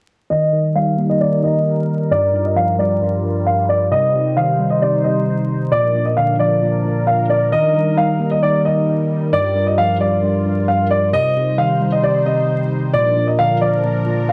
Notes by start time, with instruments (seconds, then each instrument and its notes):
0.30 tine electric piano D#3, analog synth pad G3 D#4 A#4, grand piano D#5
0.53 tine electric piano D#3
0.75 tine electric piano G3, grand piano F5
0.98 tine electric piano A#3
1.09 grand piano D#5
1.21 tine electric piano D#3, grand piano D5
1.43 tine electric piano D#3, grand piano D#5
2.11 tine electric piano G2, analog synth pad G3 F4, grand piano D5
2.33 tine electric piano G2
2.45 grand piano D#5
2.56 tine electric piano F3, grand piano F5
2.79 tine electric piano G3, grand piano D5
3.01 tine electric piano G2
3.23 tine electric piano G2
3.46 grand piano F5
3.69 grand piano D5
3.91 tine electric piano C3, analog synth pad D#4 C5, grand piano D#5
4.14 tine electric piano C3
4.37 tine electric piano D#3, grand piano F5
4.59 tine electric piano G3
4.70 grand piano D#5
4.81 tine electric piano C3, grand piano D5
5.04 tine electric piano C3, grand piano D#5
5.72 tine electric piano A#2, analog synth pad F3 D4 A#4, grand piano D5
5.95 tine electric piano A#2
6.06 grand piano D#5
6.17 tine electric piano D3, grand piano F5
6.39 tine electric piano F3, grand piano D5
6.62 tine electric piano A#2
6.85 tine electric piano A#2
7.07 grand piano F5
7.30 grand piano D5
7.52 tine electric piano D#3, analog synth pad G3 D#4, grand piano D#5
7.75 tine electric piano D#3
7.97 tine electric piano G3, grand piano F5
8.20 tine electric piano A#3
8.31 grand piano D#5
8.43 tine electric piano D#3, grand piano D5
8.65 tine electric piano D#3, grand piano D#5
9.33 tine electric piano G2, analog synth pad F4, grand piano D5
9.55 tine electric piano G2
9.67 grand piano D#5
9.78 tine electric piano F3, grand piano F5
10.00 tine electric piano G3, grand piano D5
10.23 tine electric piano G2
10.45 tine electric piano G2
10.68 grand piano F5
10.91 grand piano D5
11.13 tine electric piano C3, analog synth pad G3 D#4 C5, grand piano D#5
11.36 tine electric piano C3
11.58 tine electric piano D#3, grand piano F5
11.81 tine electric piano G3
11.92 grand piano D#5
12.03 tine electric piano C3, grand piano D5
12.26 tine electric piano C3, grand piano D#5
12.94 tine electric piano A#2, analog synth pad F3 D4 A#4, grand piano D5
13.16 tine electric piano A#2
13.27 grand piano D#5
13.39 tine electric piano D3, grand piano F5
13.61 tine electric piano F3, grand piano D5
13.84 tine electric piano A#2
14.07 tine electric piano A#2
14.29 grand piano F5